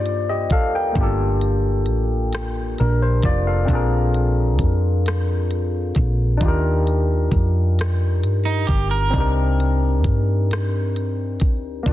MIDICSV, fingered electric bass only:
0, 0, Header, 1, 2, 480
1, 0, Start_track
1, 0, Tempo, 909091
1, 504, Time_signature, 6, 3, 24, 8
1, 6299, End_track
2, 0, Start_track
2, 0, Title_t, "Fingered electric bass"
2, 0, Program_c, 0, 33
2, 0, Note_on_c, 0, 43, 57
2, 271, Note_off_c, 0, 43, 0
2, 271, Note_on_c, 0, 38, 97
2, 487, Note_off_c, 0, 38, 0
2, 508, Note_on_c, 0, 31, 104
2, 998, Note_off_c, 0, 31, 0
2, 998, Note_on_c, 0, 33, 70
2, 1450, Note_off_c, 0, 33, 0
2, 1479, Note_on_c, 0, 34, 73
2, 1691, Note_off_c, 0, 34, 0
2, 1714, Note_on_c, 0, 29, 93
2, 1928, Note_off_c, 0, 29, 0
2, 1951, Note_on_c, 0, 34, 91
2, 2428, Note_off_c, 0, 34, 0
2, 2428, Note_on_c, 0, 41, 71
2, 3125, Note_off_c, 0, 41, 0
2, 3153, Note_on_c, 0, 34, 84
2, 3368, Note_off_c, 0, 34, 0
2, 3389, Note_on_c, 0, 39, 83
2, 3846, Note_off_c, 0, 39, 0
2, 3867, Note_on_c, 0, 41, 65
2, 4356, Note_off_c, 0, 41, 0
2, 4356, Note_on_c, 0, 43, 73
2, 4569, Note_off_c, 0, 43, 0
2, 4592, Note_on_c, 0, 31, 93
2, 4807, Note_off_c, 0, 31, 0
2, 4828, Note_on_c, 0, 36, 91
2, 5307, Note_off_c, 0, 36, 0
2, 5307, Note_on_c, 0, 43, 63
2, 6031, Note_off_c, 0, 43, 0
2, 6031, Note_on_c, 0, 38, 100
2, 6247, Note_off_c, 0, 38, 0
2, 6269, Note_on_c, 0, 31, 92
2, 6299, Note_off_c, 0, 31, 0
2, 6299, End_track
0, 0, End_of_file